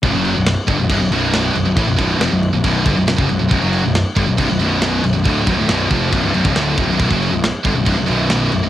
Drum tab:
CC |x-x-x-x-x-x-x-x-|x-x-x-x-x-x-x-x-|x-x-x-x-x-x-x-x-|x-x-x-x-x-x-x-x-|
SD |----o-------o---|----o-------o---|----o-------o---|----o-------o---|
BD |o-----o-o-------|o-o-----o-o--o--|o-----o-o-------|o-o---o-o--o--o-|

CC |x-x-x-x-x-x-x-x-|
SD |----o-------o---|
BD |oo----o-o-------|